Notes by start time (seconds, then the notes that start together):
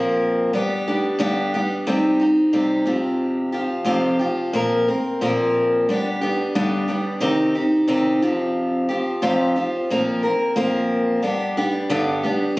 Already playing: A#2 F3 A#3 C4 A#4
0.53 G3 B3 D4 G4
0.88 G3 B3 D4 G4
1.19 G2 D3 G3 B3 D4 G4
1.54 G3 B3 D4 G4
1.87 C3 G3 C4 D#4 G4
2.20 C4 D#4 G4
2.53 C3 G3 C4 D#4 G4
2.86 F2 C3 F3 C4 F4 G4
3.52 F3 C4 F4 G4
3.84 F2 C3 F3 C4 F4 G4
4.19 F3 C4 F4 G4
4.53 A#2 F3 A#3 C4 A#4
4.88 A#3 C4 A#4
5.21 A#2 F3 A#3 C4 A#4
5.89 G3 B3 D4 G4
6.21 G3 B3 D4 G4
6.55 G2 D3 G3 B3 D4 G4
6.88 G3 B3 D4 G4
7.20 C3 D#3 C4 D#4 G4
7.55 C4 D#4 G4
7.87 C3 D#3 C4 D#4 G4
8.22 F2 C3 F3 C4 F4 G4
8.89 F3 C4 F4 G4
9.22 F2 C3 F3 C4 F4 G4
9.56 F3 C4 F4 G4
9.90 A#2 F3 A#3 C4 A#4
10.23 A#3 C4 A#4
10.56 A#2 F3 A#3 C4 A#4
11.22 G3 B3 D4 G4
11.57 G3 B3 D4 G4
11.90 G2 D3 G3 B3 D4 G4
12.23 G3 B3 D4 G4